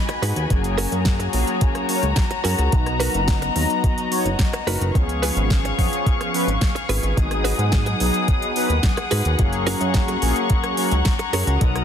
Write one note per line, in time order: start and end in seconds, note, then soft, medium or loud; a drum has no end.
0.00 4.91 F#4 medium
0.00 0.48 D#5 medium
0.00 2.69 G#5 medium
0.00 0.48 B5 medium
0.09 muted clean electric guitar stroke medium
0.09 cross-stick medium
0.09 closed hi-hat soft
0.22 0.33 G#2 medium
0.22 0.50 D#4 loud
0.22 0.50 F#4 medium
0.22 0.50 G#4 medium
0.22 0.50 B4 loud
0.22 open hi-hat loud
0.36 0.47 D#2 medium
0.36 closed hi-hat soft
0.49 0.86 F#1 loud
0.49 1.30 F#3 medium
0.49 1.30 A#3 medium
0.49 1.31 C#4 medium
0.49 1.31 G#4 medium
0.49 2.71 C#5 medium
0.49 4.91 A#5 medium
0.49 kick loud
0.49 closed hi-hat medium
0.64 closed hi-hat soft
0.78 0.99 C#4 loud
0.78 0.99 F#4 medium
0.78 0.99 G#4 medium
0.78 0.99 A#4 loud
0.78 open hi-hat loud
0.92 1.28 F#2 medium
0.92 closed hi-hat soft
1.05 kick loud
1.05 snare loud
1.05 closed hi-hat medium
1.19 muted clean electric guitar stroke medium
1.19 closed hi-hat soft
1.33 1.44 A#1 medium
1.33 1.86 F#3 medium
1.33 1.86 A#3 medium
1.33 1.86 C#4 medium
1.33 1.86 G#4 loud
1.33 muted clean electric guitar stroke soft
1.33 open hi-hat loud
1.47 closed hi-hat soft
1.61 kick loud
1.61 closed hi-hat loud
1.75 cross-stick medium
1.75 closed hi-hat soft
1.89 2.04 F#3 medium
1.89 2.04 A#3 medium
1.89 2.04 C#4 medium
1.89 2.04 C#5 loud
1.89 open hi-hat loud
2.03 2.13 C#2 medium
2.03 closed hi-hat soft
2.16 kick loud
2.16 snare loud
2.16 closed hi-hat medium
2.31 muted clean electric guitar stroke medium
2.31 closed hi-hat soft
2.44 2.55 F#2 loud
2.44 2.72 C#4 loud
2.44 2.72 F#4 medium
2.44 2.72 G#4 medium
2.44 2.72 A#4 loud
2.44 open hi-hat loud
2.58 2.69 C#2 medium
2.58 closed hi-hat soft
2.71 3.09 B1 loud
2.71 3.52 F#3 medium
2.71 3.52 B3 medium
2.71 3.53 D#4 medium
2.71 4.93 D#5 medium
2.71 3.53 A#5 medium
2.71 kick loud
2.71 closed hi-hat medium
2.86 cross-stick medium
2.86 closed hi-hat soft
3.00 3.21 D#4 loud
3.00 3.21 F#4 loud
3.00 3.21 A#4 loud
3.00 3.21 B4 loud
3.00 open hi-hat loud
3.14 3.50 F#1 medium
3.14 closed hi-hat soft
3.28 kick loud
3.28 snare loud
3.28 closed hi-hat medium
3.42 muted clean electric guitar stroke medium
3.42 closed hi-hat soft
3.55 3.66 D#2 medium
3.55 4.08 F#3 medium
3.55 4.08 B3 medium
3.55 4.08 D#4 medium
3.55 4.08 A#5 loud
3.55 muted clean electric guitar stroke soft
3.55 open hi-hat loud
3.70 closed hi-hat soft
3.84 kick loud
3.84 closed hi-hat medium
3.98 closed hi-hat soft
4.11 4.26 F#3 medium
4.11 4.26 B3 medium
4.11 4.26 D#4 medium
4.11 4.26 C#5 loud
4.11 open hi-hat loud
4.25 4.36 F#1 medium
4.25 closed hi-hat soft
4.39 kick loud
4.39 snare loud
4.39 closed hi-hat medium
4.53 muted clean electric guitar stroke medium
4.53 cross-stick medium
4.53 closed hi-hat soft
4.67 4.77 F#1 loud
4.67 4.95 D#4 medium
4.67 4.95 F#4 loud
4.67 4.95 A#4 medium
4.67 4.95 B4 loud
4.67 open hi-hat loud
4.81 4.91 F#1 medium
4.81 closed hi-hat soft
4.93 5.31 C#2 loud
4.93 5.74 F3 medium
4.93 5.75 B3 medium
4.93 5.75 C#4 medium
4.93 11.57 G#4 medium
4.93 5.75 G#4 medium
4.93 7.15 F5 medium
4.93 7.15 C#6 medium
4.93 kick loud
4.93 closed hi-hat medium
5.09 closed hi-hat soft
5.22 5.44 C#4 loud
5.22 5.44 F4 medium
5.22 5.44 G#4 loud
5.22 5.44 B4 loud
5.22 open hi-hat loud
5.37 5.72 G#1 medium
5.37 closed hi-hat soft
5.50 kick loud
5.50 snare loud
5.50 closed hi-hat medium
5.65 muted clean electric guitar stroke medium
5.65 closed hi-hat soft
5.78 5.89 F2 medium
5.78 6.30 F3 medium
5.78 6.30 B3 medium
5.78 6.31 C#4 medium
5.78 6.31 G#4 loud
5.78 muted clean electric guitar stroke soft
5.78 kick medium
5.78 open hi-hat loud
5.93 closed hi-hat soft
6.06 kick loud
6.06 closed hi-hat medium
6.21 cross-stick medium
6.21 closed hi-hat soft
6.34 6.49 F3 medium
6.34 6.49 B3 medium
6.34 6.49 C#4 medium
6.34 6.49 B4 loud
6.34 open hi-hat loud
6.47 6.58 G#1 medium
6.47 closed hi-hat soft
6.61 kick loud
6.61 snare loud
6.61 closed hi-hat medium
6.75 muted clean electric guitar stroke medium
6.75 closed hi-hat soft
6.89 6.99 G#1 medium
6.89 7.17 C#4 medium
6.89 7.17 F4 medium
6.89 7.17 G#4 loud
6.89 7.17 B4 loud
6.89 open hi-hat loud
7.03 7.13 G#1 medium
7.03 closed hi-hat soft
7.16 7.53 G#1 loud
7.16 7.97 F#3 medium
7.16 7.97 B3 medium
7.16 7.97 D#4 medium
7.16 7.98 G#4 medium
7.16 11.84 F#5 medium
7.16 9.37 D#6 medium
7.16 kick loud
7.16 closed hi-hat medium
7.31 cross-stick medium
7.31 closed hi-hat soft
7.44 7.66 D#4 loud
7.44 7.66 F#4 medium
7.44 7.66 G#4 loud
7.44 7.66 B4 loud
7.44 open hi-hat loud
7.58 7.95 G#2 medium
7.58 closed hi-hat soft
7.72 kick loud
7.72 snare loud
7.72 closed hi-hat medium
7.86 muted clean electric guitar stroke medium
7.86 closed hi-hat soft
8.00 8.11 B1 medium
8.00 8.52 F#3 medium
8.00 8.52 B3 medium
8.00 8.53 D#4 medium
8.00 8.53 G#4 loud
8.00 muted clean electric guitar stroke soft
8.00 open hi-hat loud
8.14 closed hi-hat soft
8.28 kick loud
8.28 closed hi-hat medium
8.42 closed hi-hat soft
8.56 8.71 F#3 medium
8.56 8.71 B3 medium
8.56 8.71 D#4 medium
8.56 8.71 B4 loud
8.56 open hi-hat loud
8.69 8.80 D#2 medium
8.69 closed hi-hat soft
8.83 kick loud
8.83 snare loud
8.83 closed hi-hat medium
8.97 muted clean electric guitar stroke medium
8.97 cross-stick medium
8.97 closed hi-hat soft
9.11 9.22 G#2 medium
9.11 9.39 D#4 loud
9.11 9.39 F#4 medium
9.11 9.39 G#4 loud
9.11 9.39 B4 loud
9.11 open hi-hat loud
9.25 9.36 D#2 medium
9.25 closed hi-hat soft
9.38 9.75 F#1 loud
9.38 10.19 F#3 medium
9.38 10.19 A#3 medium
9.38 10.19 C#4 medium
9.38 10.20 G#4 medium
9.38 11.84 A#5 medium
9.38 11.60 C#6 medium
9.38 kick loud
9.38 closed hi-hat medium
9.53 closed hi-hat soft
9.67 9.88 C#4 loud
9.67 9.88 F#4 medium
9.67 9.88 G#4 loud
9.67 9.88 A#4 loud
9.67 open hi-hat loud
9.81 10.17 F#2 medium
9.81 closed hi-hat soft
9.94 kick loud
9.94 snare loud
9.94 closed hi-hat medium
10.08 muted clean electric guitar stroke medium
10.08 closed hi-hat soft
10.22 10.33 A#1 medium
10.22 10.74 F#3 medium
10.22 10.75 A#3 medium
10.22 10.75 C#4 medium
10.22 10.75 G#4 medium
10.22 muted clean electric guitar stroke soft
10.22 open hi-hat loud
10.36 closed hi-hat soft
10.50 kick loud
10.50 closed hi-hat loud
10.64 cross-stick medium
10.64 closed hi-hat soft
10.77 10.92 F#3 medium
10.77 10.93 A#3 medium
10.77 10.93 C#4 medium
10.77 10.93 C#5 loud
10.77 open hi-hat loud
10.91 11.02 C#2 medium
10.91 closed hi-hat soft
11.05 kick loud
11.05 snare loud
11.05 closed hi-hat medium
11.19 muted clean electric guitar stroke medium
11.19 closed hi-hat soft
11.33 11.44 F#2 medium
11.33 11.61 C#4 loud
11.33 11.61 F#4 medium
11.33 11.61 G#4 loud
11.33 11.61 A#4 loud
11.33 open hi-hat loud
11.47 11.58 C#2 medium
11.47 closed hi-hat soft
11.60 11.84 B1 loud
11.60 11.84 F#3 medium
11.60 11.84 B3 medium
11.60 11.84 D#4 medium
11.60 11.84 A#4 medium
11.60 11.84 D#6 medium
11.60 kick loud
11.60 closed hi-hat medium
11.76 cross-stick medium
11.76 closed hi-hat soft